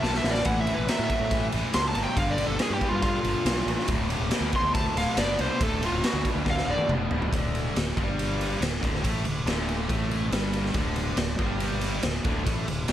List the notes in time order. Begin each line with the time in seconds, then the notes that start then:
0.03 B1 D2 B2 A5, snare
0.14 E5, snare
0.24 A1 D2 B2, snare
0.30 D5
0.34 snare
0.45 A1 A2 E3 F#5, kick, ride
0.61 E5
0.67 A2 E3, ride
0.74 B4
0.78 A1
0.88 A2 F#3 E5, snare, ride
0.99 A2
1.04 E5
1.10 A2 F#3, kick, ride
1.20 A2
1.31 A2 E3, kick, ride
1.52 A1 A2 E3, ride
1.73 C#2 A2 F#3 C6, snare, ride
1.88 A5
1.95 G1 A2 F#3, ride
2.04 G5
2.17 G1 G2 D3 F5, kick, ride
2.30 D5
2.38 G2 D3, ride
2.47 G1 A4
2.59 G2 E3 G#4, snare, ride
2.70 G2 G4
2.81 G2 E3, kick, ride
2.89 G2 F4
3.02 G2 D3 F4, kick, ride
3.23 G1 G2 D3, ride
3.45 B1 G2 E3, snare, ride
3.66 A1 G2 E3, ride
3.79 snare
3.88 D1 D2 A2, kick, ride
4.10 D2 A2, ride
4.20 D1
4.31 D2 B2, snare, ride
4.41 D2
4.53 D2 B2 C6, kick, ride
4.62 D2
4.74 D2 A2 A5, kick, ride
4.95 D1 D2 A2 F5, snare, ride
5.17 F#1 D2 B2 D5, snare, ride
5.38 C2 D2 B2 C5, ride
5.60 D1 D2 A2 A4, kick, ride
5.82 D2 A2 F4, ride
5.92 D1
6.03 D2 B2 F#4, snare, ride
6.13 D2
6.25 D2 B2, kick, ride
6.34 D2
6.46 D2 A2, kick, snare
6.50 F5
6.57 snare
6.67 D1 D2 A2 D5
6.78 high tom
6.89 F1 D2 B2, mid tom
7.11 D1 D2 B2, floor tom
7.22 floor tom
7.32 D1 D2 D3, kick, ride
7.55 ride
7.74 D1 D2, snare, ride
7.97 G1 G2 G3, kick, ride
8.19 ride
8.41 ride
8.61 D1 D2, snare, ride
8.81 D1 D2 D3, kick, ride
8.95 snare
9.03 A1 A2 A3, kick, ride
9.24 D1 D2, ride
9.45 D1 D2 D3, snare, ride
9.69 ride
9.89 A1 A2 A3, kick, ride
10.11 ride
10.31 G1 G2 G3, snare, ride
10.53 ride
10.65 snare
10.74 D1 D2 D3, kick, ride
10.96 ride
11.16 D1 D2, snare, ride
11.38 G1 G2 G3, kick, ride
11.60 ride
11.81 ride
12.03 D1 D2, snare, ride
12.24 D1 D2 D3, kick, ride
12.44 A1 A2 A3, kick, ride
12.66 D1 D2, ride
12.88 D2 D3, snare, ride